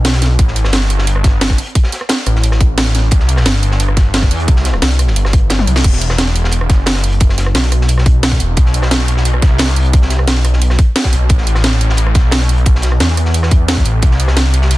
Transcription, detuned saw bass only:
Already playing: B1
0.39 A1
0.73 G1
2.26 A1
2.78 A1
3.12 C2
3.46 G1
4.31 E2
4.48 C2
4.82 C2
5.16 G1
5.67 C2
5.84 E1
6.70 F#1
7.55 B1
8.40 E1
8.57 B1
9.42 C2
10.28 B1
11.13 B1
11.30 A1
12.15 B1
13.00 E2
13.85 A1
14.03 C2

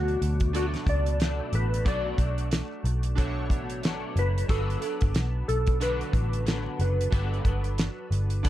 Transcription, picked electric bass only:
Already playing: D2
0.22 D2
0.87 C#2
1.53 A1
1.86 B1
2.18 B1
2.84 B1
3.50 A1
4.16 F#1
4.49 G1
5.02 G1
5.16 B1
5.49 B1
6.13 A1
6.79 F#1
7.13 G1
7.45 G1
8.11 G1

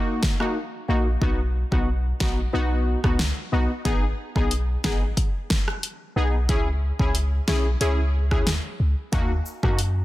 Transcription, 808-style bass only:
0.89 A#1
1.22 B1
1.72 B1
2.20 A#1
2.54 B1
3.04 C#2
3.52 B1
3.85 G#1
4.36 B1
4.84 G#1
6.16 B1
6.49 C#2
6.99 C#2
7.48 B1
7.81 C#2
8.31 D#2
8.80 C#2
9.13 D#2
9.63 F#2

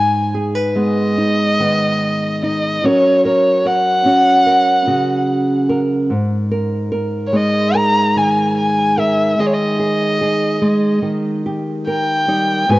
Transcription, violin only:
Already playing: G#5
0.80 D#5
2.45 D#5
2.85 C#5
3.26 C#5
3.66 F#5
7.27 C#5
7.36 D#5
7.76 A#5
8.17 G#5
8.57 G#5
8.99 E5
9.39 D#5
9.46 C#5
9.53 D#5
11.88 G5
12.70 G#5

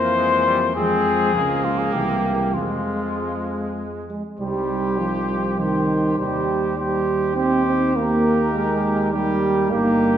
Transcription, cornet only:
Already playing: C5
0.76 G#4
1.64 F4
1.78 G#4
1.93 G4
2.53 F4
4.39 C5
5.58 C5
6.18 C5
6.78 C5
7.36 C5
7.96 A#4
9.13 A#4
9.72 A#4

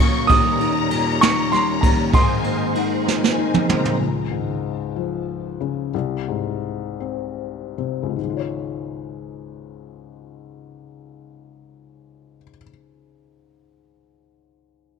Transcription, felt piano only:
Already playing: C#2 A#2 A#3
0.00 C#3
0.30 D#1 D#2
0.60 D#3
0.92 A#2
1.21 D#3
1.52 G3
1.84 D#3
2.14 G#1 G#2
2.46 C4
2.76 D#3
3.07 C4
3.39 D#4
3.69 C4
3.99 C#2
4.31 G#2
4.96 F3
5.61 C#3
5.94 C2
6.28 G#2
7.00 C4
7.78 C3
8.03 C#2
8.10 G#2
8.16 D#3
8.24 G#3
8.30 F4
8.37 C#5

